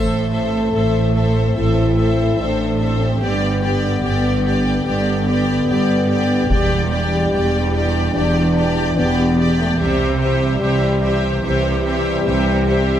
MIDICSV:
0, 0, Header, 1, 9, 480
1, 0, Start_track
1, 0, Key_signature, 0, "minor"
1, 0, Tempo, 823045
1, 1871, Time_signature, 4, 2, 24, 8
1, 7579, End_track
2, 0, Start_track
2, 0, Title_t, "Violin section"
2, 0, Program_c, 0, 48
2, 0, Note_on_c, 0, 76, 44
2, 181, Note_off_c, 0, 76, 0
2, 188, Note_on_c, 0, 76, 36
2, 426, Note_off_c, 0, 76, 0
2, 437, Note_on_c, 0, 76, 42
2, 664, Note_off_c, 0, 76, 0
2, 671, Note_on_c, 0, 76, 39
2, 898, Note_off_c, 0, 76, 0
2, 905, Note_on_c, 0, 76, 39
2, 1141, Note_off_c, 0, 76, 0
2, 1148, Note_on_c, 0, 76, 42
2, 1379, Note_off_c, 0, 76, 0
2, 1386, Note_on_c, 0, 76, 36
2, 1617, Note_off_c, 0, 76, 0
2, 1624, Note_on_c, 0, 76, 34
2, 1862, Note_off_c, 0, 76, 0
2, 1871, Note_on_c, 0, 79, 42
2, 2106, Note_off_c, 0, 79, 0
2, 2115, Note_on_c, 0, 79, 36
2, 2348, Note_off_c, 0, 79, 0
2, 2356, Note_on_c, 0, 79, 39
2, 2588, Note_off_c, 0, 79, 0
2, 2600, Note_on_c, 0, 79, 39
2, 2831, Note_off_c, 0, 79, 0
2, 2838, Note_on_c, 0, 79, 42
2, 3070, Note_off_c, 0, 79, 0
2, 3076, Note_on_c, 0, 79, 40
2, 3309, Note_off_c, 0, 79, 0
2, 3321, Note_on_c, 0, 79, 37
2, 3549, Note_off_c, 0, 79, 0
2, 3556, Note_on_c, 0, 79, 43
2, 3789, Note_off_c, 0, 79, 0
2, 3795, Note_on_c, 0, 79, 47
2, 4028, Note_off_c, 0, 79, 0
2, 4038, Note_on_c, 0, 79, 37
2, 4266, Note_off_c, 0, 79, 0
2, 4273, Note_on_c, 0, 79, 42
2, 4507, Note_off_c, 0, 79, 0
2, 4515, Note_on_c, 0, 79, 41
2, 4747, Note_off_c, 0, 79, 0
2, 4754, Note_on_c, 0, 79, 42
2, 4985, Note_off_c, 0, 79, 0
2, 4992, Note_on_c, 0, 79, 46
2, 5227, Note_off_c, 0, 79, 0
2, 5238, Note_on_c, 0, 79, 41
2, 5470, Note_off_c, 0, 79, 0
2, 5479, Note_on_c, 0, 79, 47
2, 5711, Note_off_c, 0, 79, 0
2, 5715, Note_on_c, 0, 76, 48
2, 5949, Note_off_c, 0, 76, 0
2, 5956, Note_on_c, 0, 76, 43
2, 6182, Note_off_c, 0, 76, 0
2, 6189, Note_on_c, 0, 76, 51
2, 6427, Note_off_c, 0, 76, 0
2, 6437, Note_on_c, 0, 76, 46
2, 6663, Note_off_c, 0, 76, 0
2, 6670, Note_on_c, 0, 76, 47
2, 6904, Note_off_c, 0, 76, 0
2, 6911, Note_on_c, 0, 76, 50
2, 7146, Note_off_c, 0, 76, 0
2, 7153, Note_on_c, 0, 76, 51
2, 7386, Note_off_c, 0, 76, 0
2, 7393, Note_on_c, 0, 76, 46
2, 7579, Note_off_c, 0, 76, 0
2, 7579, End_track
3, 0, Start_track
3, 0, Title_t, "Violin section"
3, 0, Program_c, 1, 48
3, 0, Note_on_c, 1, 72, 42
3, 181, Note_off_c, 1, 72, 0
3, 188, Note_on_c, 1, 72, 39
3, 425, Note_off_c, 1, 72, 0
3, 433, Note_on_c, 1, 72, 38
3, 666, Note_off_c, 1, 72, 0
3, 673, Note_on_c, 1, 72, 36
3, 908, Note_off_c, 1, 72, 0
3, 918, Note_on_c, 1, 72, 39
3, 1148, Note_off_c, 1, 72, 0
3, 1155, Note_on_c, 1, 72, 41
3, 1388, Note_off_c, 1, 72, 0
3, 1402, Note_on_c, 1, 72, 42
3, 1632, Note_off_c, 1, 72, 0
3, 1638, Note_on_c, 1, 72, 39
3, 1870, Note_off_c, 1, 72, 0
3, 1879, Note_on_c, 1, 74, 44
3, 2106, Note_off_c, 1, 74, 0
3, 2113, Note_on_c, 1, 74, 39
3, 2347, Note_off_c, 1, 74, 0
3, 2355, Note_on_c, 1, 74, 41
3, 2588, Note_off_c, 1, 74, 0
3, 2599, Note_on_c, 1, 74, 39
3, 2830, Note_off_c, 1, 74, 0
3, 2845, Note_on_c, 1, 74, 37
3, 3073, Note_off_c, 1, 74, 0
3, 3083, Note_on_c, 1, 74, 41
3, 3312, Note_off_c, 1, 74, 0
3, 3324, Note_on_c, 1, 74, 44
3, 3551, Note_off_c, 1, 74, 0
3, 3558, Note_on_c, 1, 74, 43
3, 3788, Note_off_c, 1, 74, 0
3, 3795, Note_on_c, 1, 74, 46
3, 4028, Note_off_c, 1, 74, 0
3, 4039, Note_on_c, 1, 74, 42
3, 4270, Note_off_c, 1, 74, 0
3, 4285, Note_on_c, 1, 74, 43
3, 4513, Note_off_c, 1, 74, 0
3, 4525, Note_on_c, 1, 74, 40
3, 4752, Note_off_c, 1, 74, 0
3, 4759, Note_on_c, 1, 74, 44
3, 4990, Note_off_c, 1, 74, 0
3, 5001, Note_on_c, 1, 74, 48
3, 5230, Note_off_c, 1, 74, 0
3, 5237, Note_on_c, 1, 74, 48
3, 5468, Note_off_c, 1, 74, 0
3, 5475, Note_on_c, 1, 74, 45
3, 5709, Note_off_c, 1, 74, 0
3, 5717, Note_on_c, 1, 72, 55
3, 5945, Note_off_c, 1, 72, 0
3, 5952, Note_on_c, 1, 72, 47
3, 6188, Note_off_c, 1, 72, 0
3, 6195, Note_on_c, 1, 72, 47
3, 6423, Note_off_c, 1, 72, 0
3, 6430, Note_on_c, 1, 72, 45
3, 6664, Note_off_c, 1, 72, 0
3, 6671, Note_on_c, 1, 72, 55
3, 6908, Note_off_c, 1, 72, 0
3, 6919, Note_on_c, 1, 72, 45
3, 7146, Note_off_c, 1, 72, 0
3, 7153, Note_on_c, 1, 72, 52
3, 7388, Note_off_c, 1, 72, 0
3, 7395, Note_on_c, 1, 72, 48
3, 7579, Note_off_c, 1, 72, 0
3, 7579, End_track
4, 0, Start_track
4, 0, Title_t, "Viola section"
4, 0, Program_c, 2, 48
4, 0, Note_on_c, 2, 69, 46
4, 181, Note_off_c, 2, 69, 0
4, 187, Note_on_c, 2, 69, 40
4, 422, Note_off_c, 2, 69, 0
4, 429, Note_on_c, 2, 69, 39
4, 666, Note_off_c, 2, 69, 0
4, 671, Note_on_c, 2, 69, 35
4, 905, Note_off_c, 2, 69, 0
4, 912, Note_on_c, 2, 69, 44
4, 1144, Note_off_c, 2, 69, 0
4, 1151, Note_on_c, 2, 69, 39
4, 1379, Note_off_c, 2, 69, 0
4, 1386, Note_on_c, 2, 69, 40
4, 1621, Note_off_c, 2, 69, 0
4, 1628, Note_on_c, 2, 69, 39
4, 1865, Note_off_c, 2, 69, 0
4, 1869, Note_on_c, 2, 67, 51
4, 2103, Note_off_c, 2, 67, 0
4, 2110, Note_on_c, 2, 67, 38
4, 2339, Note_off_c, 2, 67, 0
4, 2346, Note_on_c, 2, 67, 39
4, 2581, Note_off_c, 2, 67, 0
4, 2588, Note_on_c, 2, 67, 37
4, 2819, Note_off_c, 2, 67, 0
4, 2826, Note_on_c, 2, 67, 42
4, 3060, Note_off_c, 2, 67, 0
4, 3067, Note_on_c, 2, 67, 42
4, 3294, Note_off_c, 2, 67, 0
4, 3301, Note_on_c, 2, 67, 42
4, 3539, Note_off_c, 2, 67, 0
4, 3546, Note_on_c, 2, 67, 36
4, 3777, Note_off_c, 2, 67, 0
4, 3784, Note_on_c, 2, 67, 55
4, 4017, Note_off_c, 2, 67, 0
4, 4024, Note_on_c, 2, 67, 39
4, 4263, Note_off_c, 2, 67, 0
4, 4269, Note_on_c, 2, 67, 42
4, 4502, Note_off_c, 2, 67, 0
4, 4509, Note_on_c, 2, 67, 41
4, 4741, Note_off_c, 2, 67, 0
4, 4748, Note_on_c, 2, 67, 46
4, 4980, Note_off_c, 2, 67, 0
4, 4987, Note_on_c, 2, 67, 45
4, 5220, Note_off_c, 2, 67, 0
4, 5227, Note_on_c, 2, 67, 45
4, 5460, Note_off_c, 2, 67, 0
4, 5467, Note_on_c, 2, 67, 45
4, 5702, Note_off_c, 2, 67, 0
4, 5709, Note_on_c, 2, 67, 58
4, 5940, Note_off_c, 2, 67, 0
4, 5947, Note_on_c, 2, 67, 48
4, 6180, Note_off_c, 2, 67, 0
4, 6187, Note_on_c, 2, 67, 49
4, 6420, Note_off_c, 2, 67, 0
4, 6427, Note_on_c, 2, 67, 46
4, 6663, Note_off_c, 2, 67, 0
4, 6670, Note_on_c, 2, 67, 51
4, 6902, Note_off_c, 2, 67, 0
4, 6909, Note_on_c, 2, 67, 50
4, 7147, Note_off_c, 2, 67, 0
4, 7156, Note_on_c, 2, 67, 53
4, 7384, Note_off_c, 2, 67, 0
4, 7391, Note_on_c, 2, 67, 48
4, 7579, Note_off_c, 2, 67, 0
4, 7579, End_track
5, 0, Start_track
5, 0, Title_t, "French horn section"
5, 0, Program_c, 3, 60
5, 0, Note_on_c, 3, 57, 61
5, 883, Note_off_c, 3, 57, 0
5, 909, Note_on_c, 3, 64, 58
5, 1390, Note_off_c, 3, 64, 0
5, 1400, Note_on_c, 3, 62, 55
5, 1755, Note_off_c, 3, 62, 0
5, 1758, Note_on_c, 3, 60, 49
5, 1868, Note_on_c, 3, 59, 58
5, 1874, Note_off_c, 3, 60, 0
5, 2810, Note_off_c, 3, 59, 0
5, 2819, Note_on_c, 3, 59, 67
5, 3766, Note_off_c, 3, 59, 0
5, 3781, Note_on_c, 3, 55, 65
5, 4727, Note_off_c, 3, 55, 0
5, 4746, Note_on_c, 3, 62, 71
5, 5229, Note_off_c, 3, 62, 0
5, 5231, Note_on_c, 3, 59, 69
5, 5589, Note_on_c, 3, 57, 59
5, 5592, Note_off_c, 3, 59, 0
5, 5705, Note_on_c, 3, 55, 72
5, 5711, Note_off_c, 3, 57, 0
5, 6557, Note_off_c, 3, 55, 0
5, 6657, Note_on_c, 3, 55, 77
5, 7579, Note_off_c, 3, 55, 0
5, 7579, End_track
6, 0, Start_track
6, 0, Title_t, "Trombone section"
6, 0, Program_c, 4, 61
6, 0, Note_on_c, 4, 52, 50
6, 0, Note_on_c, 4, 60, 52
6, 1844, Note_off_c, 4, 52, 0
6, 1845, Note_off_c, 4, 60, 0
6, 1863, Note_on_c, 4, 50, 49
6, 1864, Note_on_c, 4, 62, 45
6, 3764, Note_off_c, 4, 50, 0
6, 3764, Note_off_c, 4, 62, 0
6, 3794, Note_on_c, 4, 52, 58
6, 3799, Note_on_c, 4, 62, 51
6, 5618, Note_off_c, 4, 52, 0
6, 5618, Note_off_c, 4, 62, 0
6, 5717, Note_on_c, 4, 52, 60
6, 5719, Note_on_c, 4, 60, 53
6, 7579, Note_off_c, 4, 52, 0
6, 7579, Note_off_c, 4, 60, 0
6, 7579, End_track
7, 0, Start_track
7, 0, Title_t, "Cello section"
7, 0, Program_c, 5, 48
7, 0, Note_on_c, 5, 45, 48
7, 376, Note_off_c, 5, 45, 0
7, 430, Note_on_c, 5, 45, 45
7, 854, Note_off_c, 5, 45, 0
7, 913, Note_on_c, 5, 45, 45
7, 1335, Note_off_c, 5, 45, 0
7, 1391, Note_on_c, 5, 45, 49
7, 1814, Note_off_c, 5, 45, 0
7, 1867, Note_on_c, 5, 43, 49
7, 2292, Note_off_c, 5, 43, 0
7, 2347, Note_on_c, 5, 43, 54
7, 2772, Note_off_c, 5, 43, 0
7, 2828, Note_on_c, 5, 43, 51
7, 3252, Note_off_c, 5, 43, 0
7, 3312, Note_on_c, 5, 43, 51
7, 3735, Note_off_c, 5, 43, 0
7, 3792, Note_on_c, 5, 40, 55
7, 4215, Note_off_c, 5, 40, 0
7, 4274, Note_on_c, 5, 40, 52
7, 4696, Note_off_c, 5, 40, 0
7, 4754, Note_on_c, 5, 40, 60
7, 5176, Note_off_c, 5, 40, 0
7, 5234, Note_on_c, 5, 40, 52
7, 5657, Note_off_c, 5, 40, 0
7, 5715, Note_on_c, 5, 48, 58
7, 6138, Note_off_c, 5, 48, 0
7, 6190, Note_on_c, 5, 48, 58
7, 6615, Note_off_c, 5, 48, 0
7, 6671, Note_on_c, 5, 48, 59
7, 7097, Note_off_c, 5, 48, 0
7, 7152, Note_on_c, 5, 48, 59
7, 7578, Note_off_c, 5, 48, 0
7, 7579, End_track
8, 0, Start_track
8, 0, Title_t, "Double bass section"
8, 0, Program_c, 6, 48
8, 0, Note_on_c, 6, 33, 46
8, 373, Note_off_c, 6, 33, 0
8, 426, Note_on_c, 6, 33, 46
8, 852, Note_off_c, 6, 33, 0
8, 904, Note_on_c, 6, 33, 47
8, 1331, Note_off_c, 6, 33, 0
8, 1386, Note_on_c, 6, 33, 46
8, 1812, Note_off_c, 6, 33, 0
8, 1863, Note_on_c, 6, 31, 53
8, 2290, Note_off_c, 6, 31, 0
8, 2344, Note_on_c, 6, 31, 40
8, 2770, Note_off_c, 6, 31, 0
8, 2831, Note_on_c, 6, 31, 48
8, 3254, Note_off_c, 6, 31, 0
8, 3308, Note_on_c, 6, 31, 52
8, 3733, Note_off_c, 6, 31, 0
8, 3792, Note_on_c, 6, 28, 52
8, 4215, Note_off_c, 6, 28, 0
8, 4270, Note_on_c, 6, 28, 43
8, 4694, Note_off_c, 6, 28, 0
8, 4751, Note_on_c, 6, 28, 61
8, 5175, Note_off_c, 6, 28, 0
8, 5233, Note_on_c, 6, 28, 57
8, 5656, Note_off_c, 6, 28, 0
8, 5712, Note_on_c, 6, 36, 58
8, 6136, Note_off_c, 6, 36, 0
8, 6188, Note_on_c, 6, 36, 45
8, 6615, Note_off_c, 6, 36, 0
8, 6670, Note_on_c, 6, 36, 56
8, 7096, Note_off_c, 6, 36, 0
8, 7149, Note_on_c, 6, 36, 55
8, 7576, Note_off_c, 6, 36, 0
8, 7579, End_track
9, 0, Start_track
9, 0, Title_t, "Taiko and cinematic ensemble drums"
9, 3792, Note_on_c, 9, 41, 54
9, 3851, Note_off_c, 9, 41, 0
9, 7579, End_track
0, 0, End_of_file